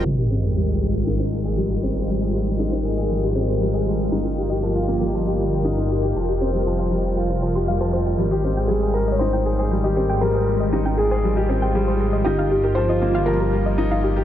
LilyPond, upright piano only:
\new Staff \with { instrumentName = "Upright piano" } { \time 4/4 \key aes \major \tempo 4 = 118 g16 g'16 c'16 aes16 g16 aes'16 aes16 r16 ees'16 ees'16 aes'16 aes'16 g16 g'16 c'16 aes16 | g16 aes'16 aes16 r16 ees'16 ees'16 aes'16 aes'16 g16 g'16 c'16 aes16 g16 aes'16 aes16 r16 | ees'16 ees'16 g'16 g'16 f16 f'16 bes16 g16 f16 g'16 g16 r16 ees'16 ees'16 g'16 g'16 | f16 g'16 c'16 g16 f16 c''16 g16 r16 f'16 f'16 f16 g'16 g16 f16 g16 f16 |
g16 g'16 c'16 aes16 g16 aes'16 aes16 r16 ees'16 ees'16 aes'16 aes'16 g16 g'16 c'16 aes16 | g16 aes'16 aes16 r16 ees'16 ees'16 aes'16 aes'16 g16 g'16 c'16 aes16 g16 aes'16 aes16 r16 | ees'16 ees'16 g'16 g'16 f16 f'16 bes16 g16 f16 g'16 g16 r16 ees'16 ees'16 g'16 g'16 | }